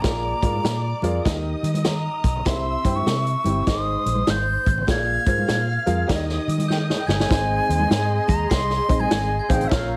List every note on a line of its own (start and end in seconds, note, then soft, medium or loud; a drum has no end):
0.01 0.32 A#1 medium
0.01 0.99 A#2 medium
0.01 0.32 F4 medium
0.01 0.32 G#4 medium
0.01 0.32 A#4 medium
0.01 1.23 D5 medium
0.01 1.23 A#5 loud
0.01 1.23 D6 medium
0.01 kick loud
0.01 snare loud
0.01 closed hi-hat medium
0.01 muted conga soft
0.01 low conga medium
0.05 0.32 D5 medium
0.42 0.58 G#2 medium
0.42 0.81 F4 medium
0.42 0.81 G#4 medium
0.42 0.81 A#4 medium
0.42 0.81 D5 medium
0.42 kick medium
0.42 closed hi-hat medium
0.53 high conga medium
0.64 0.92 A#2 loud
0.64 snare medium
0.64 closed hi-hat medium
0.64 muted conga soft
0.64 high conga medium
1.02 1.19 F2 medium
1.02 1.24 F4 medium
1.02 1.25 G#4 medium
1.02 1.24 A#4 medium
1.02 1.26 D5 medium
1.02 closed hi-hat medium
1.02 muted conga soft
1.02 high conga medium
1.25 1.53 D#2 loud
1.25 2.20 D#3 medium
1.25 2.29 D#4 medium
1.25 1.34 F4 medium
1.25 2.29 A#4 medium
1.25 2.29 D#5 loud
1.25 2.44 D#5 medium
1.25 2.44 D#6 medium
1.25 kick medium
1.25 snare loud
1.25 closed hi-hat medium
1.25 muted conga soft
1.25 high conga medium
1.32 2.32 G4 medium
1.63 2.07 D#3 medium
1.63 closed hi-hat medium
1.63 muted conga soft
1.74 closed hi-hat medium
1.74 high conga medium
1.85 2.49 A#5 medium
1.85 snare loud
1.85 closed hi-hat medium
1.85 muted conga soft
1.85 high conga medium
2.24 2.40 B1 medium
2.24 kick medium
2.24 closed hi-hat medium
2.36 low conga medium
2.45 2.74 C2 loud
2.45 3.42 C3 medium
2.45 2.74 E4 medium
2.45 2.74 G4 medium
2.45 2.74 C5 medium
2.45 3.65 E5 medium
2.45 2.74 E5 medium
2.45 2.97 C6 medium
2.45 3.65 E6 medium
2.45 kick loud
2.45 snare loud
2.45 closed hi-hat medium
2.45 muted conga soft
2.45 low conga medium
2.84 3.01 G2 medium
2.84 3.23 E4 medium
2.84 3.23 G4 medium
2.84 3.23 C5 medium
2.84 3.23 G5 medium
2.84 kick medium
2.84 closed hi-hat medium
2.84 muted conga soft
2.96 3.69 C#6 medium
2.96 high conga medium
3.06 3.34 C3 loud
3.06 snare loud
3.06 closed hi-hat medium
3.06 high conga medium
3.26 closed hi-hat soft
3.44 3.61 G1 medium
3.44 3.67 C4 medium
3.44 3.67 E4 medium
3.44 3.67 G4 medium
3.44 3.68 G5 medium
3.44 closed hi-hat medium
3.44 high conga medium
3.67 3.95 G#1 loud
3.67 4.63 G#2 medium
3.67 4.71 D#4 medium
3.67 4.71 G#4 medium
3.67 4.86 C5 medium
3.67 4.71 C5 medium
3.67 4.71 D#5 medium
3.67 4.86 C6 medium
3.67 4.32 D#6 loud
3.67 kick medium
3.67 snare loud
3.67 closed hi-hat medium
3.67 muted conga soft
3.67 high conga soft
4.06 4.22 A#1 medium
4.06 closed hi-hat medium
4.06 muted conga soft
4.15 high conga medium
4.27 4.56 G#1 medium
4.27 4.89 G6 loud
4.27 snare loud
4.27 closed hi-hat medium
4.27 muted conga soft
4.27 high conga medium
4.66 4.82 A1 medium
4.66 kick medium
4.66 closed hi-hat medium
4.66 muted conga soft
4.78 low conga medium
4.87 5.16 A#1 loud
4.87 5.83 A#2 medium
4.87 5.16 F4 medium
4.87 5.16 G#4 medium
4.87 5.16 A#4 medium
4.87 5.16 D5 medium
4.87 6.07 F5 medium
4.87 6.07 F6 medium
4.87 6.06 G#6 loud
4.87 kick loud
4.87 snare loud
4.87 closed hi-hat medium
4.87 muted conga soft
4.87 low conga medium
5.26 5.43 G#2 medium
5.26 5.65 F4 medium
5.26 5.65 G#4 medium
5.26 5.65 A#4 medium
5.26 5.66 C5 medium
5.26 kick loud
5.26 closed hi-hat medium
5.26 muted conga soft
5.38 high conga medium
5.48 5.77 A#2 medium
5.48 snare loud
5.48 closed hi-hat medium
5.48 muted conga soft
5.48 high conga medium
5.86 6.03 F2 medium
5.86 6.09 F4 medium
5.86 6.09 G#4 medium
5.86 6.06 A#4 medium
5.86 6.09 F5 loud
5.86 closed hi-hat medium
5.86 muted conga soft
5.86 high conga medium
6.08 6.37 D#2 loud
6.08 7.04 D#3 medium
6.08 7.12 D#4 medium
6.08 7.12 G4 medium
6.08 7.12 A#4 medium
6.08 6.17 D5 medium
6.08 7.28 D#5 medium
6.08 7.28 D#6 medium
6.08 kick medium
6.08 snare loud
6.08 closed hi-hat medium
6.08 muted conga soft
6.08 high conga medium
6.15 7.15 D#5 loud
6.29 snare soft
6.48 6.91 D#3 loud
6.48 closed hi-hat medium
6.48 muted conga soft
6.58 closed hi-hat medium
6.58 high conga medium
6.68 6.77 G5 medium
6.68 6.82 G6 medium
6.68 snare medium
6.68 muted conga soft
6.68 high conga medium
6.90 snare medium
6.98 7.08 G5 medium
6.98 7.07 G6 medium
7.07 7.24 G1 medium
7.07 8.29 G#5 loud
7.07 8.28 G#6 medium
7.07 snare medium
7.07 muted conga soft
7.07 low conga medium
7.20 snare medium
7.20 low conga medium
7.29 7.58 G#1 loud
7.29 8.25 G#2 medium
7.29 8.23 C4 medium
7.29 8.23 D#4 medium
7.29 8.23 G#4 medium
7.29 9.67 G#4 medium
7.29 8.23 C5 medium
7.29 9.67 D#5 medium
7.29 8.23 D#5 medium
7.29 9.67 C6 medium
7.29 kick loud
7.29 snare loud
7.29 closed hi-hat medium
7.29 muted conga soft
7.29 low conga medium
7.69 7.85 D#2 medium
7.69 closed hi-hat medium
7.69 muted conga soft
7.80 high conga medium
7.90 8.18 G#2 loud
7.90 snare loud
7.90 closed hi-hat medium
7.90 muted conga soft
7.90 high conga medium
8.28 8.45 D#2 medium
8.28 8.50 A#5 loud
8.28 8.51 A#6 medium
8.28 kick medium
8.28 closed hi-hat medium
8.28 muted conga soft
8.28 high conga medium
8.50 8.79 C2 loud
8.50 9.02 C6 loud
8.50 8.96 C7 medium
8.50 kick medium
8.50 snare loud
8.50 closed hi-hat medium
8.70 snare soft
8.88 9.05 A#1 medium
8.88 9.27 C4 medium
8.88 9.27 D#4 medium
8.88 9.27 G#4 medium
8.88 9.27 C5 medium
8.88 9.27 D#5 medium
8.88 kick medium
8.88 closed hi-hat medium
8.99 9.41 G#5 loud
8.99 9.38 G#6 medium
8.99 high conga medium
9.11 9.38 G#1 medium
9.11 snare loud
9.11 closed hi-hat medium
9.11 high conga medium
9.39 9.53 G#5 medium
9.39 9.49 G#6 medium
9.49 9.65 A1 medium
9.49 9.65 C4 medium
9.49 9.65 D#4 medium
9.49 9.65 G#4 medium
9.49 9.65 C5 medium
9.49 9.65 F5 medium
9.49 9.69 G5 loud
9.49 9.66 G6 medium
9.49 kick medium
9.49 closed hi-hat medium
9.49 muted conga soft
9.49 low conga medium
9.61 closed hi-hat soft
9.61 low conga medium
9.65 9.75 E5 medium
9.65 9.71 E6 medium
9.69 9.97 A#1 medium
9.69 9.97 A#2 medium
9.69 9.97 C#4 medium
9.69 9.97 F4 medium
9.69 9.97 A#4 medium
9.69 9.97 C#5 medium
9.69 9.97 F5 medium
9.69 9.97 F5 loud
9.69 9.97 A#5 medium
9.69 9.97 F6 medium
9.69 kick loud
9.69 snare loud
9.69 closed hi-hat medium
9.69 muted conga soft
9.69 low conga medium